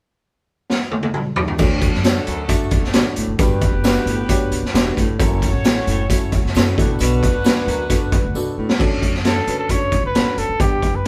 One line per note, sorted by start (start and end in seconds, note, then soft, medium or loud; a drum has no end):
0.70 snare medium
0.91 high tom medium
1.03 high tom medium
1.14 mid tom medium
1.36 floor tom loud
1.48 floor tom medium
1.58 1.91 D2 medium
1.58 1.93 D2 medium
1.58 3.14 A3 medium
1.58 1.90 D4 medium
1.58 3.14 D4 medium
1.58 3.14 F#4 medium
1.58 1.90 F#4 medium
1.58 3.14 A4 medium
1.58 1.90 A4 medium
1.58 1.90 C#5 medium
1.58 kick loud
1.58 crash medium
1.58 tambourine medium
1.81 kick medium
1.81 closed hi-hat medium
1.93 2.20 F#2 medium
1.93 snare soft
2.04 2.35 D4 medium
2.04 2.35 F#4 medium
2.04 2.35 A4 medium
2.04 2.35 C#5 medium
2.04 snare loud
2.04 closed hi-hat medium
2.04 tambourine medium
2.27 2.54 D2 medium
2.27 2.45 F#2 medium
2.27 closed hi-hat medium
2.48 2.79 D4 medium
2.48 2.80 F#4 medium
2.48 2.80 A4 medium
2.48 2.80 E5 medium
2.48 kick medium
2.48 closed hi-hat medium
2.48 tambourine medium
2.71 2.81 B1 medium
2.71 kick medium
2.71 closed hi-hat medium
2.83 2.92 C#2 medium
2.83 snare soft
2.92 3.03 A1 medium
2.92 3.12 B2 medium
2.92 3.24 D4 medium
2.92 3.24 F#4 medium
2.92 3.24 A4 medium
2.92 3.25 C#5 medium
2.92 snare loud
2.92 closed hi-hat medium
2.92 tambourine medium
3.16 3.26 F1 medium
3.16 3.35 A2 medium
3.16 closed hi-hat medium
3.27 3.37 F#1 medium
3.38 3.66 G1 medium
3.38 3.72 G2 medium
3.38 4.94 B3 medium
3.38 3.69 D4 medium
3.38 3.70 F#4 medium
3.38 3.70 G4 medium
3.38 4.94 G4 medium
3.38 3.70 B4 medium
3.38 4.94 B4 medium
3.38 kick loud
3.38 closed hi-hat loud
3.38 tambourine medium
3.61 kick medium
3.61 closed hi-hat medium
3.72 3.99 F#1 medium
3.83 4.14 D4 medium
3.83 4.15 F#4 medium
3.83 4.15 G4 medium
3.83 4.15 B4 medium
3.83 snare medium
3.83 closed hi-hat medium
3.83 tambourine medium
4.06 4.33 G1 medium
4.06 4.25 A2 medium
4.06 closed hi-hat medium
4.28 4.60 D4 medium
4.28 4.60 F#4 medium
4.28 4.60 G4 medium
4.28 4.60 C#5 medium
4.28 kick medium
4.28 closed hi-hat medium
4.28 tambourine medium
4.51 4.60 B1 medium
4.51 closed hi-hat medium
4.63 4.76 C#2 medium
4.63 snare soft
4.73 4.92 E1 medium
4.73 4.92 B2 medium
4.73 5.04 D4 medium
4.73 5.05 F#4 medium
4.73 5.05 G4 medium
4.73 5.05 B4 medium
4.73 snare loud
4.73 closed hi-hat medium
4.73 tambourine medium
4.97 5.15 F1 medium
4.97 5.15 A2 medium
4.97 kick medium
4.97 closed hi-hat medium
5.18 5.46 F#1 medium
5.18 5.52 F#2 medium
5.18 5.50 C#4 medium
5.18 6.52 C#4 medium
5.18 5.50 E4 medium
5.18 6.52 F#4 medium
5.18 5.50 F#4 medium
5.18 5.50 A4 medium
5.18 6.52 A4 medium
5.18 6.52 C#5 medium
5.18 kick loud
5.18 closed hi-hat medium
5.18 tambourine medium
5.42 kick medium
5.42 closed hi-hat medium
5.53 5.80 A1 medium
5.64 5.95 C#4 medium
5.64 5.95 E4 medium
5.64 5.95 F#4 medium
5.64 5.96 A4 medium
5.64 snare loud
5.64 closed hi-hat medium
5.64 tambourine medium
5.87 6.14 F#1 medium
5.87 6.06 A2 medium
5.87 closed hi-hat medium
6.10 6.40 C#4 medium
6.10 6.40 E4 medium
6.10 6.40 F#4 medium
6.10 6.41 A4 medium
6.10 kick medium
6.10 closed hi-hat medium
6.10 tambourine medium
6.32 6.41 E1 medium
6.32 kick medium
6.32 closed hi-hat medium
6.45 6.53 F#1 medium
6.45 snare soft
6.55 6.73 F#2 medium
6.55 6.73 B2 medium
6.55 6.78 C#4 medium
6.55 6.78 E4 medium
6.55 6.76 F#4 medium
6.55 6.77 A4 medium
6.55 snare medium
6.55 closed hi-hat medium
6.55 tambourine medium
6.77 6.95 B1 medium
6.77 6.95 A2 medium
6.77 7.31 B3 medium
6.77 8.55 B3 medium
6.77 7.31 D4 medium
6.77 8.54 D4 medium
6.77 7.32 F#4 medium
6.77 8.54 F#4 medium
6.77 7.32 A4 medium
6.77 8.55 B4 medium
6.77 kick loud
6.77 closed hi-hat medium
6.99 7.26 B1 loud
6.99 7.32 B2 medium
6.99 closed hi-hat loud
6.99 tambourine medium
7.23 kick medium
7.23 closed hi-hat medium
7.34 7.60 C#2 medium
7.44 7.75 B3 medium
7.44 7.75 D4 medium
7.44 7.75 F#4 medium
7.44 7.76 B4 medium
7.44 snare medium
7.44 closed hi-hat medium
7.44 tambourine medium
7.67 7.94 D2 medium
7.67 7.86 F#2 medium
7.67 closed hi-hat medium
7.89 8.20 B3 medium
7.89 8.20 D4 medium
7.89 8.20 F#4 medium
7.89 8.20 A4 medium
7.89 kick medium
7.89 closed hi-hat medium
7.89 tambourine medium
8.12 8.21 E2 medium
8.12 kick medium
8.12 closed hi-hat medium
8.24 8.33 D2 medium
8.34 8.53 C2 medium
8.34 8.53 B2 medium
8.34 8.65 B3 medium
8.34 8.66 D4 medium
8.34 8.66 F#4 medium
8.34 8.66 A4 medium
8.34 tambourine medium
8.57 8.75 C#2 medium
8.57 8.75 A2 medium
8.69 snare medium
8.79 9.13 D2 medium
8.79 9.10 C#4 medium
8.79 9.10 D4 medium
8.79 9.10 F#4 medium
8.79 9.10 A4 loud
8.79 kick loud
8.79 crash medium
9.02 kick medium
9.02 closed hi-hat medium
9.13 9.40 F#2 medium
9.13 snare soft
9.24 9.40 C#4 medium
9.24 9.40 D4 soft
9.24 9.40 F#4 medium
9.24 9.40 A4 medium
9.24 9.57 A4 medium
9.24 snare medium
9.24 closed hi-hat medium
9.47 9.74 D2 medium
9.47 9.63 C#4 medium
9.47 9.63 D4 medium
9.47 9.63 F#4 medium
9.47 9.63 B4 medium
9.47 closed hi-hat medium
9.59 9.72 A4 medium
9.69 10.01 C#4 medium
9.69 10.01 D4 medium
9.69 10.01 F#4 medium
9.69 10.01 A4 medium
9.69 10.04 C#5 medium
9.69 kick medium
9.69 closed hi-hat medium
9.92 10.01 B1 medium
9.92 kick medium
9.92 closed hi-hat soft
10.04 10.13 C#2 medium
10.04 10.40 B4 medium
10.15 10.24 A1 medium
10.15 10.46 C#4 medium
10.15 10.46 D4 medium
10.15 10.46 F#4 medium
10.15 10.46 A4 medium
10.15 snare medium
10.15 closed hi-hat medium
10.37 10.46 F1 medium
10.37 10.63 A4 medium
10.37 closed hi-hat medium
10.49 10.58 F#1 medium
10.60 10.86 G1 medium
10.60 10.91 B3 medium
10.60 10.91 D4 medium
10.60 10.91 G4 medium
10.60 10.97 G4 medium
10.60 10.91 F#5 medium
10.60 kick loud
10.60 closed hi-hat medium
10.82 kick medium
10.82 closed hi-hat medium
10.94 11.08 F#1 medium
10.94 11.06 B4 medium